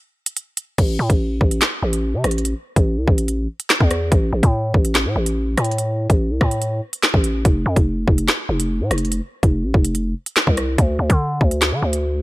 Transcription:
0.26 closed hi-hat
0.37 closed hi-hat
0.57 closed hi-hat
0.78 A1, kick, closed hi-hat, crash
0.99 A2
1.10 A1, kick, closed hi-hat
1.41 A1, kick
1.51 closed hi-hat
1.61 snare, clap, closed hi-hat
1.83 A1
1.93 closed hi-hat
2.14 C3
2.24 A1, cross-stick, closed hi-hat
2.31 closed hi-hat
2.38 closed hi-hat
2.45 closed hi-hat
2.76 A1, kick, closed hi-hat
2.97 C2
3.08 A1, kick
3.18 closed hi-hat
3.28 closed hi-hat
3.60 closed hi-hat
3.70 snare, clap, closed hi-hat
3.81 E2, kick
3.91 cross-stick, closed hi-hat
4.12 A1, kick, closed hi-hat
4.33 A1
4.43 A2, kick, closed hi-hat
4.74 A1, kick
4.85 closed hi-hat
4.95 snare, clap, closed hi-hat
5.05 A2
5.16 A1
5.26 closed hi-hat
5.58 A2, cross-stick, closed hi-hat
5.64 closed hi-hat
5.71 closed hi-hat
5.78 closed hi-hat
6.10 A1, kick, closed hi-hat
6.30 C2
6.41 A2, kick, cross-stick
6.51 closed hi-hat
6.62 closed hi-hat
6.93 closed hi-hat
7.03 snare, clap, closed hi-hat
7.14 A1, kick
7.24 closed hi-hat
7.45 F1, kick, closed hi-hat
7.66 F2
7.76 F1, kick, closed hi-hat
8.08 F1, kick
8.18 closed hi-hat
8.28 snare, clap, closed hi-hat
8.49 F1
8.60 closed hi-hat
8.80 A2
8.91 F1, cross-stick, closed hi-hat
8.98 closed hi-hat
9.05 closed hi-hat
9.12 closed hi-hat
9.43 F1, kick, closed hi-hat
9.64 A1
9.74 F1, kick
9.85 closed hi-hat
9.95 closed hi-hat
10.26 closed hi-hat
10.37 snare, clap, closed hi-hat
10.47 C2, kick
10.57 cross-stick, closed hi-hat
10.78 D2, kick, closed hi-hat
10.99 D2
11.10 D3, kick, closed hi-hat
11.41 D2, kick
11.51 closed hi-hat
11.62 snare, clap, closed hi-hat
11.72 D3
11.82 D2
11.93 closed hi-hat

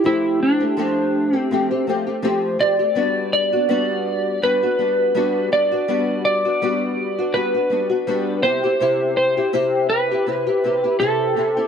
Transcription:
0.04 F3 A3 C4 E4 G4
0.43 D4
0.60 A3 C4 G4
0.77 F3 A3 C4 G4
1.33 A3 C4 G4
1.38 C4
1.51 F3 A3 C4 G4
1.71 A3 C4 G4
1.87 F3 A3 C4 G4
2.07 A3 C4 G4
2.22 F3 A3 C4 G4
2.59 F3 A3 C4 G4 D5
2.79 A3 C4 G4
2.95 G3 B3 D4 F#4
3.33 D5
3.53 B3 D4 F#4
3.69 G3 B3 D4 F#4
4.42 G3 B3 D4 F#4 B4
4.63 B3 D4 F#4
4.79 G3 B3 D4 F#4
5.15 G3 B3 D4 F#4
5.52 G3 B3 D4 F#4 D5
5.71 B3 D4 F#4
5.88 G3 B3 D4 F#4
6.25 D5
6.45 B3 D4 F#4
6.61 G3 B3 D4 F#4
7.18 B3 D4 F#4
7.34 G3 B3 D4 F#4 B4
7.54 B3 D4 F#4
7.70 G3 B3 D4 F#4
7.89 B3 D4 F#4
8.07 G3 B3 D4 F#4
8.43 C3 C4 E4 G4 C5
8.64 C4 E4 G4
8.80 C3 C4 E4 G4
9.17 C5
9.37 C4 E4 G4
9.53 C3 C4 E4 G4
9.90 B4
10.11 C4 E4 G4
10.27 C3 C4 E4 G4
10.47 C4 E4 G4
10.64 C3 C4 E4 G4
10.84 C4 E4 G4
11.00 C3 C4 E4 G4 A4
11.37 C3 C4 E4 G4
11.57 C4 E4 G4

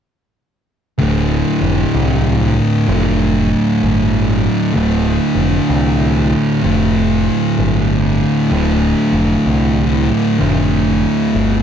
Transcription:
0.98 D1 D2 A2 D3
1.61 F1
1.94 C2
2.88 F1 D2 A2 D3
3.82 G1
4.75 D1 D2 A2 D3
5.35 F1
5.69 C2
6.63 F1 D2 A2 D3
7.59 G1
8.51 D1 D2 A2 D3
9.12 F1
9.46 C2
10.39 F1 D2 A2 D3
11.34 G1

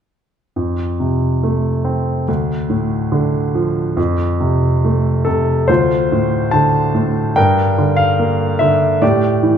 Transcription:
0.56 F2
1.00 C3
1.43 A3
1.85 C4
2.28 D2
2.70 A2
3.12 D3
3.55 F3
3.97 F2
4.40 C3
4.84 A3
5.25 C3 A4
5.68 D2 F4 C5
6.12 A2
6.51 D3 A5
6.95 A2
7.36 G2 A#4 G5
7.78 D3
7.97 F5
8.19 A#3
8.59 D3 E5
9.02 A2 G4 D5
9.43 E3

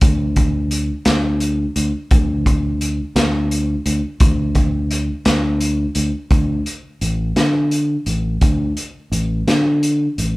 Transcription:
0.01 D2, kick, closed hi-hat
0.36 kick, closed hi-hat
0.71 closed hi-hat
1.05 D2, snare, closed hi-hat
1.40 closed hi-hat
1.76 D2, closed hi-hat
2.11 D2, kick, closed hi-hat
2.46 kick, closed hi-hat
2.81 closed hi-hat
3.16 D2, snare, closed hi-hat
3.51 closed hi-hat
3.86 D2, closed hi-hat
4.20 D2, kick, closed hi-hat
4.55 kick, closed hi-hat
4.91 closed hi-hat
5.25 D2, snare, closed hi-hat
5.61 closed hi-hat
5.95 D2, closed hi-hat
6.31 D2, kick, closed hi-hat
6.66 closed hi-hat
7.01 A1, closed hi-hat
7.36 D3, snare, closed hi-hat
7.71 closed hi-hat
8.06 A1, closed hi-hat
8.41 D2, kick, closed hi-hat
8.77 closed hi-hat
9.12 A1, closed hi-hat
9.47 D3, snare, closed hi-hat
9.83 closed hi-hat
10.18 A1, closed hi-hat

